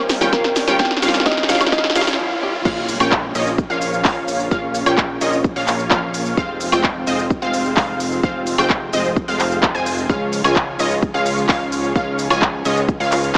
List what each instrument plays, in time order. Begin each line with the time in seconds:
Already playing: analog synth bass D#2, analog synth pad A#2 D#3 G3 D#4 G4, supersaw synth G3 C#4 F4 C#5 F5, synth pluck A#4 F5, riser
0.09 snare, open hi-hat, shaker
0.20 analog synth bass D#2, steel-string acoustic guitar F3 G3 C#4 G4, supersaw synth G3 C#4 F4 C#5 G5, synth pluck G5, snare, shaker
0.32 analog synth bass D#2, steel-string acoustic guitar F3 G3 C#4 G4, supersaw synth F4 C#5 F5, synth pluck A#4 F5, kick, snare, shaker
0.44 synth pluck A#4, snare
0.56 snare, open hi-hat, shaker
0.67 analog synth bass D#2, steel-string acoustic guitar F3 G3 C#4 G4, supersaw synth G3 C#4 F4 C#5 G5, synth pluck G5, snare, shaker
0.79 analog synth bass D#2, steel-string acoustic guitar F3 G3 C#4 G4, supersaw synth G3 C#4 C#5 F5, analog synth pad F4, synth pluck F5 G5, kick, snare, shaker
0.85 snare
0.91 snare
0.97 snare
1.02 analog synth bass D#2, steel-string acoustic guitar F3 G3 C#4 G4, supersaw synth G3 C#4 F4 C#5 F5, synth pluck F5, snare, open hi-hat, shaker
1.08 snare
1.14 snare, shaker
1.20 snare
1.25 steel-string acoustic guitar F3 G3 C#4 G4, supersaw synth G3 C#4 F4 C#5 F5, synth pluck D#5 F5, kick, snare, shaker
1.31 snare
1.37 snare
1.43 snare
1.48 analog synth bass D#2, steel-string acoustic guitar F3 G3 C#4 G4, supersaw synth G3 C#4 F4 C#5 F5, synth pluck F5, snare, open hi-hat, shaker
1.55 snare
1.61 snare, high woodblock, shaker
1.66 snare
1.72 analog synth bass D#2, steel-string acoustic guitar F3 G3 C#4 G4, supersaw synth G3 C#4 F4 C#5 F5, synth pluck D#5 F5, kick, snare, shaker
1.78 snare
1.84 snare
1.90 snare
1.95 analog synth bass D#2, steel-string acoustic guitar F3 G3 C#4 G4, supersaw synth G3 C#4 F4 C#5 F5, synth pluck F5, snare, open hi-hat, shaker
2.01 snare
2.07 snare, shaker
2.13 snare
2.18 steel-string acoustic guitar F3 G3 C#4 G4
2.41 steel-string acoustic guitar F3 G3 C#4 G4
2.65 analog synth bass A#1, analog synth pad A#2 C#3 F3 C#4 F4, supersaw synth A#3 C#4 F4 C#5 F5, synth pluck F5, kick, crash, impact, shaker
2.89 open hi-hat, shaker
3.00 analog synth bass A#1, supersaw synth A#3 C#4 F4 C#5 G5, synth pluck G5, high woodblock, shaker
3.12 kick, clap, shaker
3.35 analog synth bass A#1, supersaw synth A#3 C#4 F4 C#5 D#5, synth pluck D#5, open hi-hat, shaker
3.47 shaker
3.58 kick, shaker
3.70 analog synth bass A#1, supersaw synth A#3 C#4 F4 C#5 F5, synth pluck F5
3.82 open hi-hat, shaker
3.93 shaker
4.05 analog synth bass A#1, supersaw synth A#3 C#4 F4 C#5 F5, synth pluck F5, kick, clap, open hi-hat, shaker
4.28 open hi-hat, shaker
4.40 shaker
4.51 analog synth bass A#1, supersaw synth A#3 C#4 F4 C#5 F5, synth pluck F5, kick, shaker
4.75 open hi-hat, shaker
4.86 analog synth bass A#1, supersaw synth A#3 C#4 F4 C#5 G5, synth pluck G5, high woodblock, shaker
4.98 kick, clap, shaker
5.21 analog synth bass A#1, supersaw synth A#3 C#4 F4 C#5 D#5, synth pluck D#5, open hi-hat, shaker
5.33 shaker
5.44 kick, shaker
5.56 analog synth bass A#1, supersaw synth A#3 C#4 F4 C#5 F5, synth pluck F5, open hi-hat
5.67 clap, open hi-hat, shaker
5.79 shaker
5.91 analog synth bass A#1, supersaw synth A#3 C#4 F4 C#5 F5, synth pluck F5, kick, clap, shaker
6.14 open hi-hat, shaker
6.26 shaker
6.37 analog synth bass F1, analog synth pad G#2 C3 F3 C4, supersaw synth G#3 C4 F4 C5 F5, synth pluck F5, kick, shaker
6.61 open hi-hat, shaker
6.72 analog synth bass F1, supersaw synth G#3 C4 F4 C5 G5, synth pluck G5, high woodblock, shaker
6.84 kick, clap, shaker
7.07 analog synth bass F1, supersaw synth G#3 C4 F4 C5 D#5, synth pluck D#5, open hi-hat, shaker
7.19 shaker
7.30 kick, shaker
7.42 analog synth bass F1, supersaw synth G#3 C4 F4 C5 F5, synth pluck F5
7.54 open hi-hat, shaker
7.65 shaker
7.77 analog synth bass F1, supersaw synth G#3 C4 F4 C5 F5, synth pluck F5, kick, clap, open hi-hat, shaker
8.00 open hi-hat, shaker
8.12 shaker
8.23 analog synth bass F1, supersaw synth G#3 C4 F4 C5 F5, synth pluck F5, kick, shaker
8.47 open hi-hat, shaker
8.58 analog synth bass F1, supersaw synth G#3 C4 F4 C5 G5, synth pluck G5, high woodblock, shaker
8.70 kick, clap, shaker
8.93 analog synth bass F1, supersaw synth G#3 C4 F4 C5 D#5, synth pluck D#5, open hi-hat, shaker
9.05 shaker
9.16 kick, shaker
9.28 analog synth bass F1, supersaw synth G#3 C4 F4 C5 F5, synth pluck F5, open hi-hat
9.40 clap, open hi-hat, shaker
9.51 shaker
9.63 kick, clap, shaker
9.75 analog synth bass F1, supersaw synth G#3 C4 F4 C5 G#5, synth pluck G#5
9.86 open hi-hat, shaker
9.98 shaker
10.09 analog synth bass C#2, analog synth pad G#2 C#3 C#4 F4, supersaw synth G#3 C#4 F4 C#5 F5, synth pluck F5, kick, shaker
10.33 open hi-hat, shaker
10.44 analog synth bass C#2, supersaw synth G#3 C#4 F4 C#5 G#5, synth pluck G#5, high woodblock, shaker
10.56 kick, clap, shaker
10.79 analog synth bass C#2, supersaw synth G#3 C#4 F4 C#5 D#5, synth pluck D#5, open hi-hat, shaker
10.91 shaker
11.03 kick, shaker
11.14 analog synth bass C#2, supersaw synth G#3 C#4 F4 C#5 F5, synth pluck F5
11.26 open hi-hat, shaker
11.37 shaker
11.49 analog synth bass C#2, supersaw synth G#3 C#4 F4 C#5 F5, synth pluck F5, kick, clap, open hi-hat, shaker
11.72 open hi-hat, shaker
11.84 shaker
11.96 analog synth bass C#2, supersaw synth G#3 C#4 F4 C#5 F5, synth pluck F5, kick, shaker
12.19 open hi-hat, shaker
12.30 analog synth bass C#2, supersaw synth G#3 C#4 F4 C#5 G#5, synth pluck G#5, high woodblock, shaker
12.42 kick, clap, shaker
12.65 analog synth bass C#2, supersaw synth G#3 C#4 F4 C#5 D#5, synth pluck D#5, open hi-hat, shaker
12.77 shaker
12.89 kick, shaker
13.00 analog synth bass C#2, supersaw synth G#3 C#4 F4 C#5 F5, synth pluck F5, open hi-hat
13.12 clap, open hi-hat, shaker
13.23 shaker